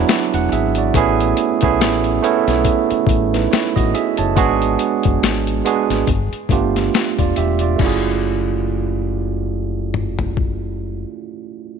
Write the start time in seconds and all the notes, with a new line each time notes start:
Already playing: F#3 B3 D4 E4 F#4 G#4
0.09 F#4 D5, snare, closed hi-hat
0.34 E1 F#5, closed hi-hat
0.52 G#1 G#4 E5, closed hi-hat
0.75 F#4 D5, closed hi-hat
0.94 A1 A3 B3 C#4 E4 G#4, kick, closed hi-hat
1.20 closed hi-hat
1.37 closed hi-hat
1.61 B1 A3 B3 C#4 E4 G#4, kick, closed hi-hat
1.81 A1, snare, closed hi-hat
2.04 closed hi-hat
2.23 A3 B3 C#4 E4 A4, closed hi-hat
2.47 B1, snare, closed hi-hat
2.65 kick, closed hi-hat
2.90 muted fingered electric bass stroke, closed hi-hat
3.07 A1, kick, closed hi-hat
3.34 D#4 B4, snare, closed hi-hat
3.51 E4 C#5, snare, closed hi-hat
3.76 A1 F#4 D#5, kick, closed hi-hat
3.94 G#4 E5, closed hi-hat
4.17 F#1 C#5 A5, closed hi-hat
4.35 G#1 G#3 B3 D4 F#4 G#4, kick, closed hi-hat
4.62 closed hi-hat
4.79 closed hi-hat
5.03 F#1, kick, closed hi-hat
5.22 G#1, snare, closed hi-hat
5.47 closed hi-hat
5.64 G#3 B3 D4 F#4 G#4, closed hi-hat
5.90 G#1, snare, closed hi-hat
6.07 G1, kick, closed hi-hat
6.33 closed hi-hat
6.49 G1 A3 B3 D4 F4 G4, kick, closed hi-hat
6.76 snare, closed hi-hat
6.94 snare, closed hi-hat
7.19 E1 F4 D5, kick, closed hi-hat
7.36 E1 G4 E5, closed hi-hat
7.59 F4 D5, closed hi-hat
7.76 F#1 A3 C#4, kick, crash
7.81 E4 F#4
7.86 G#4
9.94 mid tom
10.19 floor tom
10.37 kick